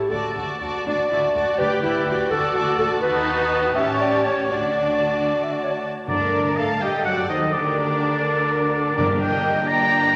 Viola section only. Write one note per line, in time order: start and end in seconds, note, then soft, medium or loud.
0.87 0.95 D4 soft
1.11 1.19 E4 soft
1.35 1.58 F#4 soft
1.59 1.83 G4 medium
1.83 2.06 E4 medium
2.07 3.03 F#4 medium
3.02 3.74 D#4 medium
3.76 4.50 C#4 medium
4.51 5.69 D4 soft
6.08 6.54 D4 medium
6.57 6.65 A4 medium
6.81 7.04 G4 soft
7.05 7.29 F#4 soft
7.29 7.52 D#4 soft
7.52 8.96 D4 medium
8.97 9.64 D4 soft
8.97 9.64 A#4 soft
9.68 10.16 D4 soft
9.68 10.16 D5 soft